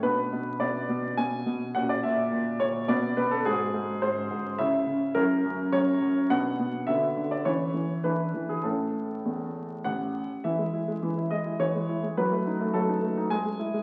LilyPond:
<<
  \new Staff \with { instrumentName = "Grand piano" } { \time 3/4 \key a \major \tempo 4 = 105 << { b'4 d''4 gis''4 | fis''16 d''16 e''4 cis''8 d''8 b'16 a'16 | gis'4 bis'4 e''4 | ais'4 cis''4 fis''4 |
e''8. d''16 cis''4 b'8. gis'16 | a'2 fis''4 | \key e \major e''4. dis''8 cis''4 | b'4 a'4 gis''4 | } \\ { d'2. | <cis' fis'>2 <b fis'>4 | <bis fis'>2 <cis' e'>4 | <cis' e'>2 <b d'>4 |
<b fis'>4 <cis' e'>4 <d' e'>4 | r2. | r2. | r2. | } >> }
  \new Staff \with { instrumentName = "Grand piano" } { \clef bass \time 3/4 \key a \major b,8 b,8 b,8 b,8 b,8 b,8 | ais,8 ais,8 ais,8 ais,8 b,8 b,8 | gis,8 gis,8 gis,8 gis,8 cis8 cis8 | fis,8 fis,8 fis,8 fis,8 b,8 b,8 |
d8 d8 e8 e8 e8 e8 | <a, cis' e'>4 e,4 a,,4 | \key e \major e16 gis16 e'16 gis16 e16 e'16 gis16 e'16 e16 gis16 e'16 gis16 | fis16 a16 dis'16 a16 fis16 dis'16 a16 dis'16 gis16 gis16 e'16 gis16 | }
>>